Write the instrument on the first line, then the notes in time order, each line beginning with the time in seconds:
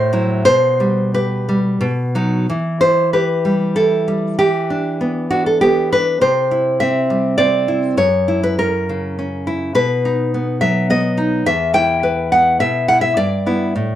nylon-string guitar
Already playing: A2 C5
0.13 F#3 E4
0.45 B2 C5
0.80 G3
1.14 G4 B4
1.49 G3
1.81 B2
2.15 F#3 D#4
2.49 E3
2.81 E4 C5
3.13 G4 B4
3.45 G3
3.76 E4 A4
4.08 G3
4.39 E3 G4
4.70 D4
5.01 B3
5.30 D4 F#4
5.46 A4
5.61 B3 G4
5.92 D4 B4
6.21 C3 C5
6.51 E4
6.80 C4 E5
7.10 G3
7.38 C4 D5
7.68 E4
7.97 F#2 C#5
8.28 E4
8.43 B4
8.59 C#4 A#4
8.89 C#3
9.19 C#4
9.47 E4
9.75 B2 B4
10.05 D#4
10.34 B3
10.61 F#3 E5
10.90 B3 D#5
11.17 D#4
11.46 E2 E5
11.74 E4 G5
12.03 B4
12.32 B3 F#5
12.60 B2 E5
12.88 E4 F#5
13.01 E5
13.17 G2 D5
13.46 B3 E4
13.76 A2